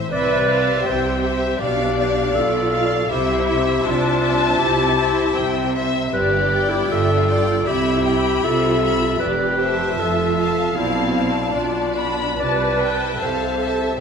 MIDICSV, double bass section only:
0, 0, Header, 1, 2, 480
1, 0, Start_track
1, 0, Tempo, 747198
1, 67, Time_signature, 4, 2, 24, 8
1, 2946, Tempo, 770218
1, 5826, Tempo, 781250
1, 7266, Tempo, 849858
1, 7746, Tempo, 800000
1, 8707, End_track
2, 0, Start_track
2, 0, Title_t, "Double bass section"
2, 0, Program_c, 0, 48
2, 64, Note_on_c, 0, 36, 67
2, 483, Note_off_c, 0, 36, 0
2, 548, Note_on_c, 0, 36, 62
2, 971, Note_off_c, 0, 36, 0
2, 1024, Note_on_c, 0, 35, 67
2, 1450, Note_off_c, 0, 35, 0
2, 1505, Note_on_c, 0, 35, 62
2, 1929, Note_off_c, 0, 35, 0
2, 1995, Note_on_c, 0, 36, 69
2, 2414, Note_off_c, 0, 36, 0
2, 2469, Note_on_c, 0, 36, 64
2, 2889, Note_off_c, 0, 36, 0
2, 2950, Note_on_c, 0, 36, 66
2, 3372, Note_off_c, 0, 36, 0
2, 3430, Note_on_c, 0, 36, 69
2, 3851, Note_off_c, 0, 36, 0
2, 3905, Note_on_c, 0, 31, 73
2, 4325, Note_off_c, 0, 31, 0
2, 4385, Note_on_c, 0, 31, 68
2, 4811, Note_off_c, 0, 31, 0
2, 4865, Note_on_c, 0, 36, 66
2, 5288, Note_off_c, 0, 36, 0
2, 5345, Note_on_c, 0, 36, 64
2, 5766, Note_off_c, 0, 36, 0
2, 5822, Note_on_c, 0, 29, 66
2, 6252, Note_off_c, 0, 29, 0
2, 6306, Note_on_c, 0, 29, 58
2, 6723, Note_off_c, 0, 29, 0
2, 6772, Note_on_c, 0, 35, 62
2, 7202, Note_off_c, 0, 35, 0
2, 7261, Note_on_c, 0, 35, 59
2, 7687, Note_off_c, 0, 35, 0
2, 7738, Note_on_c, 0, 36, 60
2, 8166, Note_off_c, 0, 36, 0
2, 8226, Note_on_c, 0, 36, 50
2, 8648, Note_off_c, 0, 36, 0
2, 8707, End_track
0, 0, End_of_file